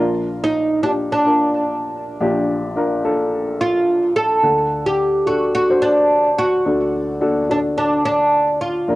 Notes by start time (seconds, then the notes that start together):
Already playing: F4
0.00 A#1 A#2 F4 A#4 D5
0.44 D#4
0.82 D4 F4 G4
1.12 D4
1.26 D4 F4 A#4
2.20 A#1 A#2 D4 F4 G4
2.76 D4 F4 A#4
3.04 D4 F4 A4
3.61 F4
4.16 A4
4.43 D2 D3 D4 A4 F#5
4.86 G4
5.26 D4 F#4 A4
5.55 F#4
5.70 D4 F#4 C5
5.82 D4
6.39 F#4
6.65 D2 D3 D4 F#4 A4
7.21 D4 F#4 A4
7.49 D4 F#4 A4
7.78 D4
8.05 D4
8.61 F4
8.88 A#1 A#2 F4 A#4 D5